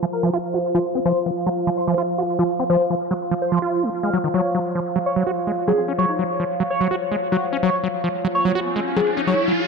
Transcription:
0.00 9.67 F3 medium
0.00 0.05 F3 medium
0.00 4.34 F4 medium
0.00 9.67 F4 medium
0.00 4.34 C5 medium
0.00 4.34 F5 medium
0.13 0.30 A#4 loud
0.23 0.30 F3 loud
0.33 0.38 F4 loud
0.54 0.59 F#4 medium
0.74 0.79 F3 loud
0.74 0.87 F4 medium
0.95 1.00 C4 medium
1.05 1.12 F3 loud
1.05 1.18 C5 loud
1.26 1.31 F3 medium
1.46 1.49 F#3 loud
1.67 1.70 F3 loud
1.77 1.94 C5 loud
1.87 1.95 F3 loud
1.98 2.03 F4 loud
2.18 2.23 F#4 medium
2.39 2.44 F3 loud
2.39 2.51 F4 medium
2.59 2.64 C4 medium
2.70 2.77 F3 loud
2.70 2.82 C5 loud
2.90 2.95 F3 medium
3.11 3.14 F#3 loud
3.31 3.34 F3 loud
3.42 3.58 C5 loud
3.52 3.59 F3 loud
3.62 3.84 F4 loud
3.83 3.90 G#3 loud
4.03 4.10 G#3 medium
4.03 4.16 F5 medium
4.13 4.18 F#3 loud
4.24 4.29 D#3 medium
4.34 4.41 F#3 loud
4.34 4.47 C#5 loud
4.55 4.59 F#3 medium
4.72 4.80 F3 medium
4.72 9.67 C#5 medium
4.96 4.99 F#3 loud
5.06 5.23 C#5 loud
5.16 5.23 F#3 loud
5.27 5.31 F#4 loud
5.47 5.52 G#3 medium
5.68 5.72 F#3 loud
5.68 5.74 C4 medium
5.68 5.80 G#4 medium
5.78 5.84 C4 medium
5.88 5.93 C#4 medium
5.98 6.06 F#3 loud
5.98 6.11 C#5 loud
6.09 6.50 D#4 medium
6.19 6.24 F#3 medium
6.40 6.44 F3 medium
6.60 6.63 F#3 loud
6.70 6.87 C#5 medium
6.81 6.88 F#3 loud
6.91 6.96 F#4 loud
7.11 7.16 G#3 medium
7.32 7.37 F#3 loud
7.32 7.45 F#4 medium
7.53 7.57 C#4 medium
7.63 7.70 F#3 loud
7.63 7.75 C#5 loud
7.63 riser medium
7.83 7.88 F#3 medium
8.01 8.09 F3 medium
8.01 9.67 G#5 medium
8.25 8.27 F#3 medium
8.35 8.51 C#5 loud
8.45 8.52 F#3 loud
8.55 8.60 F#4 loud
8.76 8.81 G#3 medium
8.96 9.01 F#3 loud
8.96 9.03 C4 medium
8.96 9.09 G#4 medium
9.07 9.13 C4 medium
9.17 9.22 C#4 medium
9.27 9.34 F#3 loud
9.27 9.40 C#5 loud
9.48 9.53 F#3 medium

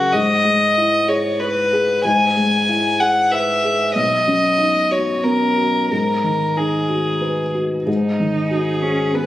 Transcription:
0.00 0.16 F#2 soft
0.00 0.16 C#3 soft
0.00 0.15 F#4 medium
0.00 0.15 F#4 soft
0.00 0.16 G#4 soft
0.00 0.15 A#4 soft
0.13 2.01 G#2 medium
0.13 1.10 D#5 medium
0.45 0.95 G#3 soft
0.77 1.28 E4 soft
1.08 1.59 G#4 soft
1.08 1.41 C#5 medium
1.40 2.04 B4 medium
1.40 1.92 B4 medium
1.73 2.24 G#4 soft
2.05 3.91 G#2 medium
2.05 3.01 G#5 medium
2.37 2.87 G#3 soft
2.69 3.19 E4 soft
3.00 3.50 G#4 soft
3.00 3.33 F#5 medium
3.31 3.82 B4 soft
3.31 3.94 E5 medium
3.64 3.95 G#4 soft
3.95 5.86 B1 medium
3.95 4.93 D#5 medium
4.27 4.79 F#2 soft
4.58 5.11 D#4 soft
4.91 5.44 F#4 soft
4.91 5.26 C#5 medium
5.24 5.77 B3 soft
5.24 5.90 A#4 medium
5.57 5.90 F#4 soft
5.90 7.83 G#2 soft
5.90 6.59 A#4 soft
6.24 6.76 D#3 soft
6.57 7.09 D#4 soft
6.57 7.55 G#4 soft
6.89 7.41 F#4 soft
7.21 7.74 B4 soft
7.55 7.87 F#4 soft
7.86 9.26 G#2 soft
7.86 8.84 D#4 medium
8.20 8.70 D#3 soft
8.51 9.02 F#4 soft
8.51 9.17 G#4 soft
8.82 9.16 C#4 medium
8.82 9.26 G#4 soft
9.14 9.26 B3 medium
9.14 9.26 B4 soft

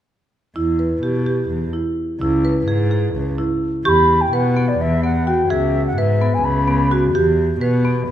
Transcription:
0.56 0.98 E2 medium
0.56 0.77 E4 medium
0.79 1.00 B4 medium
1.03 1.45 B2 medium
1.03 1.24 G4 soft
1.26 1.68 G4 medium
1.50 1.71 E2 medium
1.73 2.15 E4 soft
2.20 2.62 C#2 medium
2.20 2.42 E4 medium
2.45 2.66 B4 medium
2.68 3.09 G#2 medium
2.68 2.89 G#4 medium
2.91 3.33 G#4 medium
3.15 3.36 C#2 medium
3.38 3.80 E4 soft
3.85 4.27 E2 medium
3.85 4.27 G4 medium
3.85 4.23 B5 medium
3.85 3.90 C#6 medium
4.21 4.36 G5 medium
4.32 4.74 B2 medium
4.32 4.54 B4 medium
4.32 4.70 F#5 medium
4.57 4.98 B3 medium
4.68 4.83 D5 medium
4.80 5.42 E2 medium
4.80 5.04 E5 medium
5.04 5.24 B3 medium
5.04 5.28 F#5 medium
5.27 5.48 F#4 medium
5.27 5.52 G5 medium
5.50 5.91 C#2 medium
5.50 5.92 G#4 medium
5.50 5.86 E5 medium
5.87 6.00 F#5 medium
5.97 6.38 G#2 medium
5.97 6.19 B4 medium
5.97 6.36 E5 medium
6.21 6.63 B3 medium
6.34 6.46 G#5 medium
6.44 7.06 C#2 medium
6.44 6.97 B5 medium
6.68 6.89 B3 medium
6.91 7.12 F#4 medium
7.14 7.56 E2 medium
7.14 7.57 G4 medium
7.61 8.03 B2 medium
7.61 7.82 B4 medium
7.85 8.11 B3 medium

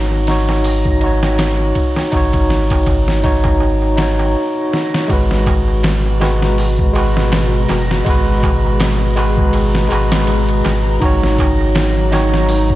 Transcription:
0.00 1.73 G#1 loud
0.00 0.23 D#4 medium
0.00 0.24 F#4 medium
0.00 0.26 C#5 loud
0.00 4.35 A#5 medium
0.12 darbuka tek soft
0.27 0.98 D#4 medium
0.27 0.99 F#4 medium
0.27 1.00 C#5 loud
0.27 snare soft
0.27 ride medium
0.49 snare soft
0.49 darbuka tek medium
0.64 open hi-hat medium
0.64 darbuka tek medium
0.85 kick medium
0.85 darbuka tek soft
1.01 2.09 D#4 medium
1.01 2.10 F#4 medium
1.01 ride medium
1.06 2.11 C#5 medium
1.23 snare medium
1.23 darbuka tek medium
1.38 snare loud
1.38 ride medium
1.38 darbuka tek medium
1.59 darbuka tek soft
1.75 kick medium
1.75 ride medium
1.96 snare soft
1.96 darbuka tek medium
2.12 4.35 G#1 loud
2.12 3.20 D#4 medium
2.12 3.21 F#4 medium
2.12 kick medium
2.12 ride medium
2.12 darbuka tek medium
2.17 3.22 C#5 loud
2.33 kick medium
2.33 ride medium
2.33 darbuka tek soft
2.50 snare soft
2.70 kick medium
2.70 ride medium
2.70 darbuka tek medium
2.86 kick medium
2.86 ride medium
2.86 darbuka tek medium
3.08 snare soft
3.08 darbuka tek soft
3.24 3.94 D#4 medium
3.24 3.95 F#4 medium
3.24 3.95 C#5 loud
3.24 kick medium
3.24 ride medium
3.44 kick medium
3.44 darbuka tek medium
3.60 darbuka tek medium
3.82 darbuka tek soft
3.97 4.35 D#4 medium
3.97 4.36 F#4 medium
3.97 snare loud
3.97 ride medium
4.02 4.37 C#5 medium
4.19 darbuka tek medium
4.73 snare medium
4.94 snare medium
5.08 7.66 G#1 loud
5.08 10.98 B2 medium
5.08 6.16 G#3 medium
5.08 10.98 G#3 medium
5.08 8.03 F#4 medium
5.08 6.17 F#4 medium
5.08 12.75 A#5 medium
5.08 kick loud
5.08 ride medium
5.08 darbuka tek soft
5.13 6.18 B4 loud
5.31 snare soft
5.31 darbuka tek soft
5.46 kick medium
5.46 ride medium
5.46 darbuka tek medium
5.68 darbuka tek soft
5.83 snare loud
5.83 ride medium
5.83 darbuka tek soft
6.06 darbuka tek soft
6.20 6.91 G#3 medium
6.20 6.91 F#4 medium
6.20 6.92 B4 medium
6.20 snare soft
6.20 ride medium
6.20 darbuka tek medium
6.42 snare soft
6.42 darbuka tek soft
6.58 open hi-hat medium
6.58 darbuka tek medium
6.79 kick loud
6.79 darbuka tek soft
6.93 8.01 G#3 medium
6.93 8.02 F#4 medium
6.93 ride medium
6.93 darbuka tek medium
6.98 8.04 B4 medium
7.16 snare medium
7.16 darbuka tek soft
7.32 snare loud
7.32 ride medium
7.32 darbuka tek medium
7.53 darbuka tek soft
7.69 8.02 F#1 medium
7.69 snare soft
7.69 ride medium
7.69 darbuka tek medium
7.90 snare medium
7.90 darbuka tek soft
8.04 9.88 G#1 loud
8.04 9.12 G#3 medium
8.04 9.14 F#4 medium
8.04 10.99 G#4 loud
8.04 kick loud
8.04 ride medium
8.04 darbuka tek medium
8.10 9.15 B4 loud
8.28 darbuka tek soft
8.43 kick medium
8.43 ride medium
8.43 darbuka tek medium
8.66 darbuka tek soft
8.80 snare loud
8.80 ride medium
8.80 darbuka tek medium
9.02 darbuka tek soft
9.16 9.87 G#3 medium
9.16 9.87 F#4 medium
9.16 9.88 B4 loud
9.16 ride medium
9.16 darbuka tek loud
9.38 kick medium
9.38 darbuka tek soft
9.53 ride medium
9.53 darbuka tek medium
9.75 snare soft
9.75 darbuka tek soft
9.89 10.62 G#1 loud
9.89 10.97 G#3 medium
9.89 10.98 F#4 medium
9.89 ride medium
9.89 darbuka tek loud
9.94 11.00 B4 loud
10.12 snare loud
10.12 darbuka tek soft
10.27 ride medium
10.27 darbuka tek soft
10.49 ride soft
10.49 darbuka tek soft
10.65 10.98 G#1 loud
10.65 snare soft
10.65 ride medium
10.65 darbuka tek medium
10.86 darbuka tek soft
11.00 12.75 G#1 loud
11.00 12.75 C#3 medium
11.00 12.75 F#3 medium
11.00 12.08 D#4 medium
11.00 12.75 D#4 medium
11.00 12.09 F#4 medium
11.00 kick loud
11.00 ride medium
11.00 darbuka tek medium
11.05 12.11 C#5 loud
11.23 snare soft
11.23 darbuka tek soft
11.38 kick loud
11.38 ride medium
11.38 darbuka tek loud
11.61 darbuka tek soft
11.75 snare loud
11.75 ride medium
11.75 darbuka tek medium
11.98 darbuka tek soft
12.12 12.75 D#4 medium
12.12 12.75 F#4 medium
12.12 12.75 C#5 loud
12.12 snare soft
12.12 ride medium
12.12 darbuka tek loud
12.33 snare soft
12.33 darbuka tek soft
12.49 open hi-hat medium
12.49 darbuka tek medium
12.70 kick loud
12.70 darbuka tek soft

